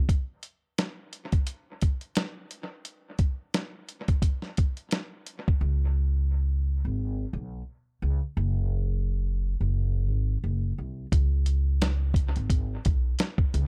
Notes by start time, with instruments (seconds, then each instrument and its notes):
0.09 kick, closed hi-hat
0.43 closed hi-hat
0.78 snare, closed hi-hat
1.13 closed hi-hat
1.32 kick, closed hi-hat
1.47 closed hi-hat
1.81 kick, closed hi-hat
2.01 closed hi-hat
2.15 snare, closed hi-hat
2.51 closed hi-hat
2.85 closed hi-hat
3.19 kick, closed hi-hat
3.54 snare, closed hi-hat
3.89 closed hi-hat
4.08 kick, closed hi-hat
4.22 kick, closed hi-hat
4.42 snare
4.57 kick, closed hi-hat
4.77 closed hi-hat
4.91 snare, closed hi-hat
5.26 closed hi-hat
5.48 kick
5.61 upright bass C#2
6.85 upright bass G#1
7.33 upright bass B1
8.02 upright bass C#2
8.37 upright bass F#1
9.61 upright bass F#1
10.09 upright bass G#1
10.44 upright bass F#1
10.78 upright bass C2
11.12 upright bass C#2, kick, closed hi-hat
11.46 closed hi-hat
11.82 snare, closed hi-hat
12.14 kick, closed hi-hat
12.36 upright bass G#1, closed hi-hat
12.50 kick, closed hi-hat
12.85 upright bass B1, kick, closed hi-hat
13.19 snare, closed hi-hat
13.38 kick
13.54 upright bass C#2, closed hi-hat